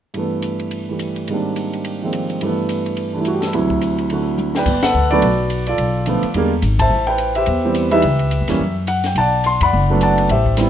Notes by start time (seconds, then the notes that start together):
0.14 G2 E3 A3, ride
0.19 B3
0.42 hi-hat pedal, ride
0.59 ride
0.71 ride
0.89 E3 G3 A3
0.99 hi-hat pedal, ride
1.16 ride
1.28 G#2 D#3 G3 A#3, ride
1.32 C4 D4
1.56 hi-hat pedal, ride
1.73 ride
1.85 ride
2.02 D#3 F3 G#3 A#3 C4
2.13 hi-hat pedal, ride
2.30 ride
2.41 G2 E3 A3, ride
2.46 B3
2.69 hi-hat pedal, ride
2.86 ride
2.97 ride
3.13 E3 G3 D4
3.18 A3 E4
3.25 F#4, hi-hat pedal, ride
3.34 G4
3.40 A4, snare, ride
3.47 B4
3.53 D2 C3 F#3 E4, ride
3.70 kick
3.81 hi-hat pedal, ride
3.98 ride
4.10 D3 A3 F#4, ride
4.38 hi-hat pedal, mid tom
4.55 B4 D5 G5, snare
4.66 G1, kick, crash
4.82 A4 B4 F#5, snare, ride
4.94 D2, hi-hat pedal
5.11 D3 F#3 A3 B3 F#4 B4 D5, ride
5.22 B1, ride
5.50 hi-hat pedal, ride
5.66 F4 A4 D5, ride
5.78 B1, ride
6.06 D3 F3 A3 B3, hi-hat pedal, ride
6.23 muted upright bass stroke, ride
6.34 E2 D3 G3 G#3 A#3, ride
6.62 G#1, hi-hat pedal, ride
6.79 C5 E5 A5, kick, ride
6.90 A1
7.07 B4 C5 G5
7.18 hi-hat pedal, ride
7.35 G4 C5 E5, ride
7.46 E2, ride
7.65 E3 G3 B3 C4
7.74 hi-hat pedal, ride
7.91 E3 G3 B3 D#4 G4 B4 E5, ride
8.02 C#2, ride
8.19 ride
8.31 hi-hat pedal, ride
8.41 E2
8.48 F2 E3 G3 A#3 C#4, snare, ride
8.59 F#2
8.87 F#5, hi-hat pedal, ride
9.04 G5, snare, ride
9.15 B1 F#5 A5, ride
9.19 D5
9.44 C6, hi-hat pedal, ride
9.61 F#2 D5 F#5 B5, kick, ride
9.73 F#1
9.90 F#3 A3 B3 D4
10.01 D5 F#5 A5, hi-hat pedal, ride
10.18 ride
10.29 A1 G4 C5 E5, ride
10.46 kick
10.57 G3 B3 C4 E4, snare, hi-hat pedal, ride